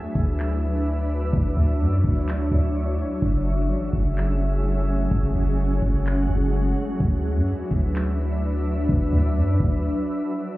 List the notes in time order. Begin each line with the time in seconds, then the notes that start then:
Already playing: F#3 D4 E4 B4 E5
0.15 D2, kick, closed hi-hat
0.39 clap, closed hi-hat
0.86 closed hi-hat
0.94 closed hi-hat
1.02 closed hi-hat
1.10 closed hi-hat
1.33 D2 A3 C#5, kick, closed hi-hat
1.57 D2
1.80 F#2, closed hi-hat
2.04 D2, kick, closed hi-hat
2.16 closed hi-hat
2.28 clap, closed hi-hat
2.51 D2
2.75 closed hi-hat
2.83 closed hi-hat
2.91 closed hi-hat
2.99 closed hi-hat
3.22 F#1 G#3 C#4 G#4 E5, kick, closed hi-hat
3.69 A1, closed hi-hat
3.93 F#1, kick, closed hi-hat
4.17 clap, closed hi-hat
4.64 closed hi-hat
4.72 closed hi-hat
4.80 closed hi-hat
4.88 closed hi-hat
5.11 F#1 F#5, kick, closed hi-hat
5.35 F#1
5.59 closed hi-hat
5.82 F#1, kick, closed hi-hat
6.06 clap, closed hi-hat
6.29 F#1
6.53 closed hi-hat
6.61 closed hi-hat
6.69 closed hi-hat
6.77 closed hi-hat
7.00 D2 F#3 D4 E4 B4 E5, kick, closed hi-hat
7.36 F#2
7.48 closed hi-hat
7.71 D2, kick, closed hi-hat
7.95 clap, closed hi-hat
8.42 closed hi-hat
8.50 closed hi-hat
8.58 closed hi-hat
8.66 closed hi-hat
8.89 D2 F#4, kick, closed hi-hat
9.13 D2
9.36 F#2, closed hi-hat
9.60 D2, kick, closed hi-hat
9.72 closed hi-hat